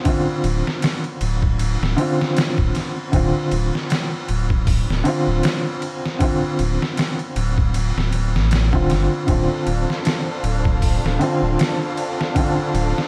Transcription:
Already playing: D3 C4 F4
0.04 D3 C4, kick, ride
0.09 F4
0.44 D1, ride
0.67 snare
0.82 snare, ride
1.04 ride
1.21 D1, ride
1.43 kick
1.59 ride
1.81 D1, snare
1.97 D3 C4, ride
2.01 F4
2.21 snare
2.37 snare, ride
2.58 D1, kick
2.75 snare, ride
3.12 D1 D3 C4, kick, ride
3.16 F4
3.52 D1, ride
3.75 snare
3.90 snare, ride
4.29 D1, ride
4.50 kick
4.67 kick, open hi-hat
4.89 D1, snare
5.04 D3 C4, ride
5.08 F4
5.27 D1
5.43 snare, ride
5.82 ride
6.06 snare
6.19 D3 C4, kick, ride
6.24 F4
6.59 D1, ride
6.82 snare
6.97 snare, ride
7.19 ride
7.36 D1, ride
7.58 kick
7.74 ride
7.96 D1, snare
8.13 ride
8.35 A1, snare
8.51 snare, ride
8.73 D1 D3 C4 F4, kick
8.90 G1, snare, ride
9.27 D1 D3 C4 D4 A4 C5 F5, kick, ride
9.31 F4
9.67 D1, ride
9.90 snare
10.05 snare, ride
10.43 D1, ride
10.65 kick
10.82 kick, open hi-hat
11.03 D1, snare
11.19 D3 C4, ride
11.23 F4
11.42 D1
11.59 snare, ride
11.97 ride
12.21 snare
12.35 D3 C4, kick, ride
12.39 F4
12.74 D1, ride
12.98 snare

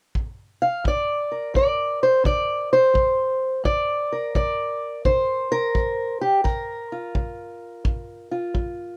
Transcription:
0.15 kick
0.62 F5
0.84 G2 D5, kick
1.32 A#4
1.54 G3 D5, kick
2.03 C5
2.24 D3 D5, kick
2.73 C5
2.94 G3, kick
3.64 G2 D5, kick
4.12 A#4
4.35 G3 D5, kick
5.05 D3 C5, kick
5.52 A#4
5.75 G3, kick
6.21 G4
6.44 G2 A#4, kick
6.92 F4
7.15 G3, kick
7.85 D3, kick
8.31 F4
8.54 G3, kick

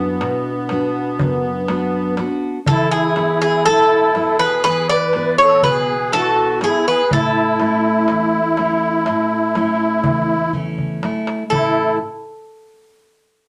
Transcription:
Already playing: F#2 B3 D4 E4 F#4
0.21 B2, darbuka tek
0.45 darbuka tek
0.69 B3 D4 F#4, darbuka tek
0.94 darbuka tek
1.19 F#2, darbuka dum
1.68 B3 D4 F#4, darbuka tek
1.93 darbuka tek
2.17 B3 D4 F#4, darbuka tek
2.66 E3 E4 A4, darbuka dum
2.91 E4 G#4
3.16 B3 E4 B4, darbuka tek
3.42 E4 G#4
3.65 B2 A4, darbuka tek
3.69 E4
4.15 B3 E4 G#4, darbuka tek
4.39 G#4 B4, darbuka tek
4.64 E3 G#4 B4, darbuka tek
4.89 B4 D5, darbuka tek
5.13 B3 E4 G#4, darbuka tek
5.38 C#5, darbuka tek
5.42 A4
5.63 B2 B4, darbuka dum
5.69 G#4
6.12 B3 E4 A4 B4, darbuka tek
6.17 F#4
6.37 darbuka tek
6.61 B3 E4 G#4, darbuka tek
6.66 E4
6.88 G#4 B4
7.11 A2 E4 A4, darbuka dum
7.35 darbuka tek
7.60 A3 C#4 E4, darbuka tek
8.08 E2, darbuka tek
8.57 A3 C#4 E4, darbuka tek
8.82 darbuka tek
9.06 A2, darbuka tek
9.31 darbuka tek
9.55 A3 C#4 E4, darbuka tek
9.80 darbuka tek
10.04 E2, darbuka dum
10.53 A3 C#4 E4, darbuka dum
10.78 darbuka dum
11.03 A3 C#4 E4, darbuka tek
11.27 darbuka tek
11.50 A2 E3 A3 C#4 E4 A4, darbuka dum

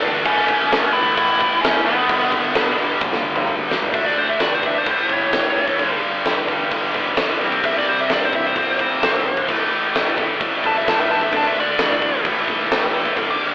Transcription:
Already playing: D3 A3 D4
0.01 G1 D3 A3 D4, crash
0.24 A1 A2 E3 A3 C#4, kick, crash
0.48 A1, kick, crash
0.71 A1, snare, crash
0.93 G1 E3 A3 E4, crash
0.97 A2
1.15 A1 E4, kick, crash
1.40 A1, kick, crash
1.61 E2 C#4, snare, crash
1.85 A1 A2 E3 A3 B3, crash
2.08 G1 G2 D3 G3, kick, crash
2.32 G1, kick, crash
2.55 G1, snare, crash
2.77 E1 G2 D3 G3, crash
3.01 G1, kick, high tom
3.13 snare
3.25 G1
3.36 mid tom
3.47 D2, mid tom
3.70 C#2 D3 G3, snare
3.74 G2
3.82 floor tom
3.93 D2 D3 A3 D4 E5, kick, crash
4.06 D5
4.17 D2 C5, crash
4.29 E5
4.40 D2 D5, snare, crash
4.55 C5
4.63 D2 D3 A3 D4 E5, kick, crash
4.78 C5
4.86 A1 A2 E3 A3, kick, crash
4.91 C5
5.09 G1 C#5, kick, crash
5.32 A1, snare, crash
5.55 A2 E3 A3, crash
5.68 kick
5.78 G1 G2 D3 G3, kick, crash
6.02 G1, crash
6.25 G1, snare, crash
6.48 G1 G2 D3 G3, kick, crash
6.71 G1, kick, crash
6.93 E1 G2 D3 G3, kick, crash
7.17 G1 G2 D3 G3, snare, crash
7.40 C2 C3 G3 C4, crash
7.52 kick
7.63 C2 E5, kick, crash
7.78 D5
7.87 C2 C5, crash
8.01 E5
8.09 C2 C3 G3 C4 D5, snare, crash
8.25 C5
8.32 C2 E5, kick, crash
8.46 C5
8.55 C2 C3 G3 C4 C5, kick, crash
8.79 A1 C3 G3 C4 C5, kick, crash
9.03 B1, snare, crash
9.26 crash
9.37 kick
9.48 A1 A2 E3 A3, kick, crash
9.72 A1, crash
9.95 A1, snare, crash
10.16 A1 A2 E3 A3, kick, crash
10.41 A1, kick, crash
10.62 G1 A2 E3 A3 A5, kick, crash
10.76 E5
10.85 C#2 A2 E3 A3 A5, snare, crash
11.00 E5
11.10 A5, crash
11.21 E5, kick
11.30 D2 D3 A3 D4, kick, crash
11.37 A5
11.47 E5
11.55 D2, crash
11.60 D5
11.78 D2, snare, crash
12.00 D2 D3 A3 D4, kick, crash
12.24 A1 A2 E3 A3, kick, crash
12.48 G1, kick, crash
12.71 A1, snare, crash
12.93 A2 E3 A3, crash
13.06 kick
13.15 G1 G2 D3 G3, kick, crash
13.31 D6
13.40 G1, crash

